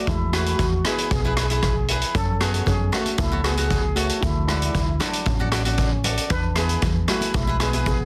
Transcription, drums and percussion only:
0.07 kick loud
0.07 closed hi-hat medium
0.33 cross-stick medium
0.33 closed hi-hat medium
0.46 closed hi-hat medium
0.59 kick medium
0.59 closed hi-hat medium
0.85 cross-stick medium
0.85 closed hi-hat medium
0.98 closed hi-hat medium
1.11 kick loud
1.11 closed hi-hat medium
1.37 cross-stick medium
1.37 closed hi-hat medium
1.50 closed hi-hat medium
1.63 kick medium
1.63 cross-stick medium
1.63 closed hi-hat medium
1.88 closed hi-hat medium
2.02 closed hi-hat medium
2.15 kick loud
2.15 closed hi-hat medium
2.41 cross-stick medium
2.41 closed hi-hat medium
2.54 closed hi-hat medium
2.66 kick medium
2.66 closed hi-hat medium
2.66 low conga medium
2.93 cross-stick medium
2.93 closed hi-hat medium
2.93 low conga medium
3.06 closed hi-hat medium
3.06 high conga medium
3.18 kick loud
3.18 closed hi-hat medium
3.18 high conga medium
3.32 high conga medium
3.44 cross-stick medium
3.44 closed hi-hat medium
3.57 closed hi-hat medium
3.57 high conga medium
3.70 kick medium
3.70 closed hi-hat medium
3.97 closed hi-hat medium
4.09 closed hi-hat medium
4.23 kick loud
4.23 closed hi-hat medium
4.48 cross-stick medium
4.48 closed hi-hat medium
4.62 closed hi-hat medium
4.74 kick medium
4.74 closed hi-hat medium
4.74 low conga medium
5.00 cross-stick medium
5.00 closed hi-hat medium
5.00 low conga medium
5.13 closed hi-hat medium
5.25 kick loud
5.25 closed hi-hat medium
5.25 high conga medium
5.39 high conga medium
5.52 cross-stick medium
5.52 closed hi-hat medium
5.65 closed hi-hat medium
5.65 high conga medium
5.78 kick medium
5.78 closed hi-hat medium
6.04 closed hi-hat medium
6.04 low conga medium
6.17 closed hi-hat medium
6.30 kick loud
6.30 closed hi-hat medium
6.56 cross-stick medium
6.56 closed hi-hat medium
6.69 closed hi-hat medium
6.82 kick medium
6.82 closed hi-hat medium
6.82 low conga medium
7.08 cross-stick medium
7.08 closed hi-hat medium
7.08 low conga medium
7.21 closed hi-hat medium
7.21 high conga medium
7.34 kick loud
7.34 closed hi-hat medium
7.34 high conga medium
7.47 high conga medium
7.60 cross-stick medium
7.60 closed hi-hat medium
7.73 closed hi-hat medium
7.73 high conga medium
7.86 kick medium
7.86 closed hi-hat medium

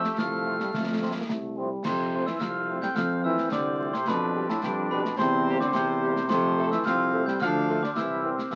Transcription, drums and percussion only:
0.05 snare medium
0.18 concert bass drum medium
0.18 snare medium
0.60 snare medium
0.74 concert bass drum medium
0.74 snare medium
1.29 concert bass drum medium
1.29 snare medium
1.85 concert bass drum medium
1.85 snare medium
1.85 crash medium
2.27 snare medium
2.41 concert bass drum medium
2.41 snare medium
2.82 snare medium
2.96 concert bass drum medium
2.96 snare medium
3.38 snare medium
3.52 concert bass drum medium
3.52 snare medium
3.94 snare medium
4.08 concert bass drum medium
4.08 snare medium
4.50 snare medium
4.63 concert bass drum medium
4.63 snare medium
5.05 snare medium
5.19 concert bass drum medium
5.19 snare medium
5.61 snare medium
5.74 concert bass drum medium
5.74 snare medium
6.16 snare medium
6.30 concert bass drum loud
6.30 snare medium
6.30 crash soft
6.72 snare medium
6.86 concert bass drum medium
6.86 snare medium
7.28 snare medium
7.41 concert bass drum medium
7.41 snare medium
7.84 snare medium
7.97 concert bass drum medium
7.97 snare medium
8.39 snare medium

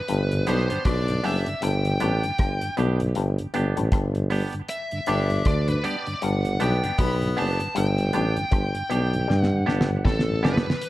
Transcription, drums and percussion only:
0.08 closed hi-hat medium
0.32 closed hi-hat soft
0.47 closed hi-hat medium
0.70 closed hi-hat medium
0.85 kick loud
0.85 cross-stick loud
0.85 closed hi-hat medium
1.08 closed hi-hat soft
1.24 open hi-hat medium
1.46 closed hi-hat medium
1.62 closed hi-hat loud
1.85 closed hi-hat soft
2.00 closed hi-hat medium
2.23 closed hi-hat soft
2.38 kick loud
2.38 cross-stick loud
2.38 closed hi-hat medium
2.61 closed hi-hat medium
2.77 closed hi-hat medium
3.00 closed hi-hat soft
3.15 closed hi-hat medium
3.38 closed hi-hat soft
3.54 closed hi-hat medium
3.77 closed hi-hat medium
3.92 kick loud
3.92 cross-stick loud
3.92 closed hi-hat medium
4.15 closed hi-hat soft
4.30 open hi-hat medium
4.53 closed hi-hat medium
4.68 closed hi-hat loud
4.91 closed hi-hat soft
5.06 closed hi-hat medium
5.30 closed hi-hat soft
5.45 kick loud
5.45 cross-stick loud
5.45 closed hi-hat medium
5.68 closed hi-hat medium
5.84 closed hi-hat medium
6.06 closed hi-hat soft
6.22 closed hi-hat medium
6.45 closed hi-hat soft
6.60 closed hi-hat medium
6.84 closed hi-hat medium
6.99 kick loud
6.99 cross-stick loud
6.99 closed hi-hat loud
7.22 closed hi-hat soft
7.37 open hi-hat medium
7.60 closed hi-hat medium
7.76 closed hi-hat loud
7.98 closed hi-hat soft
8.13 closed hi-hat medium
8.37 closed hi-hat soft
8.52 kick loud
8.52 cross-stick loud
8.52 closed hi-hat medium
8.75 closed hi-hat medium
8.91 closed hi-hat medium
9.13 closed hi-hat soft
9.30 snare medium
9.43 snare soft
9.68 snare medium
9.81 snare medium
10.05 kick loud
10.05 snare medium
10.19 snare medium
10.45 snare medium
10.57 snare loud
10.70 snare medium
10.81 closed hi-hat loud

